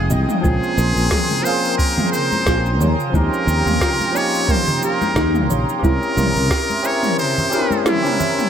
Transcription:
0.00 0.12 F1 loud
0.00 0.39 F3 medium
0.00 0.40 G#3 medium
0.00 0.42 G#3 medium
0.00 0.41 C4 medium
0.00 0.41 D#4 medium
0.00 0.11 G#4 medium
0.00 8.50 G#4 medium
0.00 0.42 F5 medium
0.00 0.42 G5 medium
0.00 8.50 G5 medium
0.00 0.41 D#6 medium
0.10 0.25 C2 medium
0.10 0.27 D#5 loud
0.10 low conga medium
0.10 cabasa medium
0.29 mid tom medium
0.29 cabasa soft
0.41 0.58 A#1 loud
0.41 1.40 F3 medium
0.41 1.41 A#3 medium
0.41 1.42 C4 medium
0.41 0.61 F4 loud
0.41 2.77 G#4 medium
0.41 1.45 G#4 loud
0.41 2.77 A#4 medium
0.41 8.49 A#5 medium
0.41 8.49 C6 medium
0.41 kick loud
0.41 high conga medium
0.41 cabasa soft
0.46 1.43 C#4 medium
0.46 1.44 G#4 medium
0.63 cabasa soft
0.78 0.92 A#1 loud
0.78 0.95 A#4 medium
0.78 cabasa medium
0.96 1.08 A#1 medium
0.96 cabasa soft
1.11 1.29 G#4 medium
1.11 kick loud
1.11 snare loud
1.11 mid tom medium
1.11 cabasa soft
1.30 high conga medium
1.30 cabasa soft
1.42 2.77 F3 medium
1.42 2.78 A#3 medium
1.42 2.78 C4 medium
1.42 1.77 C5 loud
1.42 cabasa medium
1.46 2.79 C#4 medium
1.46 2.80 G#4 medium
1.46 1.63 F5 loud
1.65 cabasa soft
1.78 2.10 A#4 loud
1.78 1.96 C5 medium
1.78 kick loud
1.78 cabasa soft
1.97 mid tom medium
1.97 low conga medium
1.97 cabasa soft
2.12 2.30 A#4 medium
2.12 2.76 C5 loud
2.12 cabasa medium
2.32 high conga medium
2.32 cabasa soft
2.46 2.80 A#1 medium
2.46 2.64 F4 loud
2.46 kick loud
2.46 snare loud
2.46 cabasa soft
2.66 cabasa soft
2.80 2.94 D#2 loud
2.80 2.97 C#5 loud
2.80 5.81 F5 medium
2.80 5.80 G5 medium
2.80 mid tom medium
2.80 low conga medium
2.80 cabasa medium
3.00 cabasa soft
3.10 3.28 D#2 loud
3.10 4.09 F3 medium
3.10 4.10 C4 medium
3.10 4.11 C#4 medium
3.10 kick loud
3.14 3.31 D#4 loud
3.14 4.12 D#4 medium
3.14 4.13 G4 medium
3.14 4.18 A#4 loud
3.14 high conga medium
3.14 cabasa soft
3.33 cabasa soft
3.47 3.61 D#2 loud
3.47 3.65 G4 medium
3.47 cabasa medium
3.66 3.77 D#2 medium
3.66 mid tom medium
3.66 cabasa soft
3.81 3.98 F4 medium
3.81 kick loud
3.81 snare loud
3.81 cabasa soft
4.00 high conga medium
4.00 cabasa soft
4.11 5.78 F3 medium
4.11 5.79 A#3 medium
4.11 5.80 C#4 medium
4.11 4.32 C#5 loud
4.16 5.81 D#4 medium
4.16 5.78 G4 medium
4.16 4.53 C#5 loud
4.16 cabasa medium
4.35 cabasa soft
4.48 4.65 A#4 medium
4.48 4.84 C5 loud
4.48 kick loud
4.48 mid tom medium
4.48 cabasa soft
4.68 low conga medium
4.68 cabasa soft
4.83 4.99 G4 medium
4.83 5.47 A#4 medium
4.83 cabasa medium
5.01 high conga medium
5.01 cabasa soft
5.16 5.50 D#2 loud
5.16 5.33 D#4 loud
5.16 kick loud
5.16 snare loud
5.16 cabasa soft
5.34 mid tom medium
5.34 cabasa soft
5.50 5.64 A#1 loud
5.50 5.67 C#5 loud
5.50 low conga medium
5.50 cabasa medium
5.69 cabasa soft
5.79 6.80 C4 medium
5.79 6.80 C#4 medium
5.79 6.79 G4 medium
5.83 5.98 C2 loud
5.83 6.00 E4 loud
5.83 6.81 E4 medium
5.83 8.50 A#4 medium
5.83 6.88 A#4 loud
5.83 6.82 A#4 medium
5.83 8.50 E5 medium
5.83 kick loud
5.83 high conga loud
5.83 cabasa soft
6.03 cabasa soft
6.17 6.31 C2 loud
6.17 6.34 A#4 medium
6.17 mid tom medium
6.17 cabasa medium
6.36 6.47 C2 medium
6.36 cabasa soft
6.51 6.68 G4 medium
6.51 kick loud
6.51 snare loud
6.51 cabasa soft
6.70 high conga medium
6.70 cabasa soft
6.82 7.48 C4 medium
6.82 7.49 C#4 medium
6.82 7.49 E4 medium
6.82 7.48 G4 medium
6.82 7.50 A#4 loud
6.82 7.19 C#5 loud
6.82 7.02 E5 loud
6.82 cabasa medium
7.03 mid tom medium
7.03 cabasa soft
7.19 7.35 C5 medium
7.19 7.82 C5 loud
7.19 cabasa soft
7.38 low conga medium
7.38 cabasa soft
7.50 7.99 C4 medium
7.50 8.00 C#4 medium
7.50 8.00 E4 medium
7.50 7.99 G4 medium
7.50 7.69 A#4 medium
7.50 8.01 A#4 medium
7.50 high tom medium
7.50 cabasa medium
7.71 high conga medium
7.71 cabasa soft
7.86 8.02 E4 loud
7.86 8.50 E4 loud
7.86 snare loud
7.86 mid tom medium
7.86 cabasa soft
8.02 8.35 C4 medium
8.02 8.36 C#4 medium
8.02 8.36 E4 medium
8.02 8.35 G4 medium
8.02 8.37 A#4 medium
8.02 mid tom medium
8.02 cabasa soft
8.20 8.36 E5 medium
8.20 low conga medium
8.20 cabasa medium
8.39 mid tom medium
8.39 cabasa soft

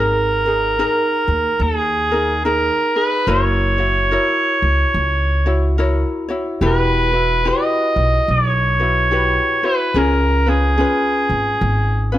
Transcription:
0.00 0.81 G#1 medium
0.00 0.46 D#4 medium
0.00 0.46 G#4 medium
0.00 0.44 A#4 medium
0.00 1.63 A#4 medium
0.46 0.78 D#4 soft
0.46 0.78 G#4 soft
0.46 0.78 A#4 soft
0.79 2.13 D#4 medium
0.79 2.12 G#4 medium
0.79 2.11 A#4 medium
1.28 1.49 D#2 medium
1.59 2.68 D#2 medium
1.59 2.44 G#4 medium
2.11 2.44 D#4 soft
2.11 2.44 G#4 soft
2.11 2.44 A#4 medium
2.45 2.96 D#4 medium
2.45 2.95 G#4 medium
2.45 2.98 A#4 medium
2.45 2.96 A#4 medium
2.96 3.28 D#4 soft
2.96 3.28 G#4 soft
2.96 3.30 B4 medium
3.27 4.15 F#1 medium
3.27 3.79 E4 medium
3.27 3.78 F#4 medium
3.27 3.77 A#4 medium
3.27 5.78 C#5 medium
3.27 3.77 C#5 medium
3.78 4.11 E4 soft
3.78 4.11 F#4 soft
3.78 4.11 C#5 soft
4.11 5.47 E4 medium
4.11 5.46 F#4 medium
4.11 5.45 A#4 soft
4.11 5.45 C#5 medium
4.62 4.83 C#2 medium
4.94 6.03 C#2 medium
5.46 5.78 E4 soft
5.46 5.78 F#4 soft
5.46 5.78 C#5 medium
5.78 6.30 E4 medium
5.78 6.29 F#4 medium
5.78 6.28 A#4 medium
5.78 6.27 C#5 medium
6.29 6.61 E4 soft
6.29 6.61 F#4 soft
6.29 6.61 C#5 medium
6.61 7.49 E1 medium
6.61 7.13 E4 medium
6.61 7.12 F#4 medium
6.61 7.12 G4 medium
6.61 7.11 B4 medium
6.65 7.49 B4 medium
7.13 7.44 E4 soft
7.13 7.45 F#4 soft
7.13 7.45 B4 soft
7.45 8.79 E4 medium
7.45 8.79 F#4 medium
7.45 8.79 G4 medium
7.45 8.80 B4 medium
7.45 8.32 D#5 loud
7.96 8.17 B1 medium
8.28 9.36 B1 medium
8.28 9.67 C#5 medium
8.80 9.10 E4 soft
8.80 9.11 F#4 soft
8.80 9.11 B4 soft
9.11 9.63 E4 medium
9.11 9.62 F#4 medium
9.11 9.62 G4 medium
9.11 9.62 B4 medium
9.63 9.96 E4 soft
9.63 9.95 F#4 soft
9.63 9.95 B4 soft
9.63 9.99 B4 medium
9.94 10.82 C#2 medium
9.94 10.47 C#4 medium
9.94 10.46 F4 medium
9.94 10.46 G#4 medium
9.94 10.51 A#4 medium
10.46 10.77 C#4 soft
10.46 10.78 F4 soft
10.46 12.14 G#4 medium
10.46 10.78 B4 soft
10.78 12.14 C#4 medium
10.78 12.12 F4 medium
10.78 12.12 G#4 medium
10.78 12.12 B4 medium
11.29 11.50 G#1 medium
11.61 12.19 G#1 medium
12.12 12.19 C#4 soft
12.12 12.19 F4 soft
12.12 12.19 B4 medium

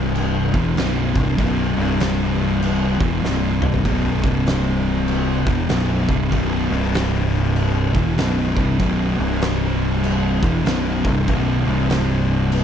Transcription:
0.00 0.49 C1 loud
0.00 0.52 C2 medium
0.00 0.52 G2 loud
0.00 0.53 C3 loud
0.15 crash medium
0.53 0.75 E1 loud
0.53 0.75 E2 medium
0.53 0.76 B2 loud
0.53 0.76 E3 loud
0.53 kick loud
0.75 1.13 B0 medium
0.75 1.13 B1 loud
0.75 1.14 F#2 loud
0.75 1.14 B2 loud
0.75 snare loud
0.75 crash medium
1.14 1.37 C1 loud
1.14 1.37 C2 loud
1.14 1.37 G2 loud
1.14 1.38 C3 loud
1.14 kick loud
1.38 1.74 B0 loud
1.38 1.77 B1 medium
1.38 1.77 F#2 loud
1.38 1.77 B2 loud
1.38 kick loud
1.38 crash medium
1.77 2.96 C1 loud
1.77 2.99 C2 medium
1.77 2.99 G2 loud
1.77 2.99 C3 loud
2.00 snare loud
2.00 crash medium
2.62 crash medium
3.00 3.21 E1 medium
3.00 3.22 E2 medium
3.00 3.23 B2 loud
3.00 3.23 E3 loud
3.00 kick loud
3.23 3.81 C1 loud
3.23 3.84 C2 loud
3.23 3.84 G2 loud
3.23 3.85 C3 loud
3.23 snare medium
3.62 mid tom medium
3.74 floor tom medium
3.84 4.21 B0 medium
3.84 4.22 B1 medium
3.84 4.22 F#2 loud
3.84 4.23 B2 medium
3.84 kick loud
3.84 crash medium
4.23 5.43 C1 medium
4.23 5.46 C2 medium
4.23 5.46 G2 medium
4.23 5.46 C3 medium
4.23 kick loud
4.47 snare loud
4.47 crash medium
5.08 crash medium
5.46 5.68 E1 medium
5.46 5.69 E2 medium
5.46 5.69 B2 loud
5.46 5.70 E3 loud
5.46 kick loud
5.69 6.06 B0 loud
5.69 6.08 B1 loud
5.69 6.08 F#2 medium
5.69 6.08 B2 loud
5.69 snare loud
5.69 crash medium
6.08 6.30 C1 loud
6.08 6.31 C2 loud
6.08 6.32 G2 medium
6.08 6.32 C3 loud
6.08 kick loud
6.32 6.68 B0 medium
6.32 6.71 B1 loud
6.32 6.71 F#2 loud
6.32 6.72 B2 loud
6.32 kick loud
6.32 crash medium
6.70 7.90 C1 loud
6.70 7.93 C2 loud
6.70 7.94 G2 medium
6.70 7.94 C3 medium
6.94 snare loud
6.94 crash medium
7.56 crash medium
7.94 8.16 E1 loud
7.94 8.16 E2 medium
7.94 8.17 B2 loud
7.94 8.17 E3 loud
7.94 kick loud
8.17 8.54 B0 loud
8.17 8.55 B1 medium
8.17 8.55 F#2 medium
8.17 8.56 B2 loud
8.17 snare loud
8.17 crash medium
8.56 8.78 C1 loud
8.56 8.78 C2 medium
8.56 8.79 G2 loud
8.56 8.79 C3 loud
8.56 kick loud
8.79 9.16 B0 medium
8.79 9.17 B1 loud
8.79 9.17 F#2 loud
8.79 9.18 B2 loud
8.79 kick loud
8.79 crash medium
9.18 10.38 C1 loud
9.18 10.41 C2 medium
9.18 10.41 G2 medium
9.18 10.42 C3 loud
9.41 snare loud
9.41 crash medium
10.04 crash medium
10.42 10.64 E1 loud
10.42 10.65 E2 loud
10.42 10.65 B2 medium
10.42 10.65 E3 loud
10.42 kick loud
10.65 11.02 B0 loud
10.65 11.03 B1 loud
10.65 11.03 F#2 loud
10.65 11.04 B2 loud
10.65 snare loud
10.65 crash medium
11.04 11.26 C1 loud
11.04 11.27 C2 medium
11.04 11.27 G2 loud
11.04 11.27 C3 loud
11.04 kick loud
11.28 11.64 B0 loud
11.28 11.65 B1 medium
11.28 11.66 F#2 medium
11.28 11.66 B2 loud
11.28 kick loud
11.28 crash medium
11.66 12.64 C1 medium
11.66 12.64 C2 medium
11.66 12.64 G2 loud
11.66 12.64 C3 loud
11.90 snare loud
11.90 crash medium
12.52 crash medium

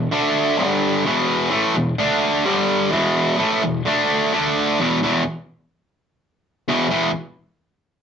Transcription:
0.12 0.58 D3 medium
0.12 0.59 A3 loud
0.12 0.58 D4 loud
0.59 1.05 G2 medium
0.59 1.05 D3 medium
0.59 1.05 G3 loud
1.05 1.51 E2 loud
1.05 1.50 B2 loud
1.05 1.49 E3 loud
1.51 1.74 A2 medium
1.51 1.74 E3 loud
1.51 1.74 A3 loud
1.75 1.94 E2 medium
1.75 1.94 B2 medium
1.98 2.44 D3 medium
1.98 2.45 A3 medium
1.98 2.45 D4 loud
2.45 2.91 G2 medium
2.45 2.91 D3 medium
2.45 2.91 G3 loud
2.91 3.38 E2 loud
2.91 3.38 B2 medium
2.91 3.38 E3 loud
3.38 3.61 A2 medium
3.38 3.62 E3 medium
3.38 3.62 A3 loud
3.63 3.81 E2 medium
3.63 3.82 B2 medium
3.86 4.32 D3 medium
3.86 4.33 A3 medium
3.86 4.33 D4 loud
4.34 4.79 D3 medium
4.34 4.79 A3 medium
4.34 4.80 D4 medium
4.80 4.98 E2 medium
4.80 4.99 B2 medium
4.80 4.99 E3 medium
5.03 5.22 E2 medium
5.03 5.22 B2 medium
5.03 5.22 E3 medium
6.68 6.86 E2 medium
6.68 6.87 B2 medium
6.68 6.87 E3 medium
6.90 7.09 E2 medium
6.90 7.09 B2 medium
6.90 7.09 E3 medium

